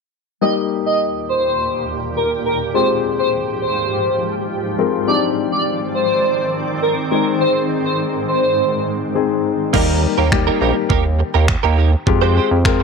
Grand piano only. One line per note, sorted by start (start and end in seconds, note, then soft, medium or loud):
0.41 2.71 G3 medium
0.41 2.71 A#3 medium
0.41 2.71 D#4 medium
0.41 2.71 G4 medium
2.74 4.74 G#3 medium
2.74 4.75 C4 medium
2.74 4.75 F4 medium
2.74 4.75 G4 medium
4.78 5.08 G#3 medium
4.78 5.06 C4 medium
4.78 5.08 F4 medium
4.78 5.08 A#4 medium
5.07 7.07 C4 medium
5.07 7.08 D4 medium
5.07 7.08 D#4 medium
5.07 7.08 G4 medium
7.11 9.11 G#3 medium
7.11 9.11 C4 medium
7.11 9.12 D#4 medium
7.11 9.12 G#4 medium
9.15 9.73 G#3 medium
9.15 9.74 C4 medium
9.15 9.72 D#4 medium
9.15 9.74 G#4 medium
9.73 10.22 G3 medium
9.73 10.22 A#3 medium
9.73 10.22 D#4 medium
9.73 10.22 G4 medium
10.32 11.28 G3 medium
10.32 11.28 A#3 medium
10.32 11.28 D#4 medium
10.32 11.28 G4 medium
12.07 12.55 G#3 medium
12.07 12.55 C4 medium
12.07 12.55 F4 medium
12.07 12.55 G4 medium
12.65 12.83 G#3 medium
12.65 12.83 C4 medium
12.65 12.83 F4 medium
12.65 12.83 A#4 medium